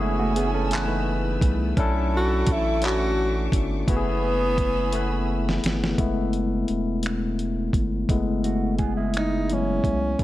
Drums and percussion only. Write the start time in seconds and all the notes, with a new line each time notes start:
0.36 closed hi-hat
0.71 clap, closed hi-hat
1.41 kick, closed hi-hat
1.77 kick, closed hi-hat
2.47 kick, closed hi-hat
2.82 clap, closed hi-hat
3.52 kick, closed hi-hat
3.88 kick, closed hi-hat
4.58 kick, closed hi-hat
4.93 closed hi-hat
5.49 snare
5.64 snare, closed hi-hat
5.84 snare
5.98 kick, closed hi-hat
6.33 closed hi-hat
6.68 closed hi-hat
7.03 finger snap, closed hi-hat
7.39 closed hi-hat
7.73 kick, closed hi-hat
8.09 kick, closed hi-hat
8.44 closed hi-hat
8.79 kick, closed hi-hat
9.14 finger snap, closed hi-hat
9.50 closed hi-hat
9.84 kick, closed hi-hat
10.19 kick, closed hi-hat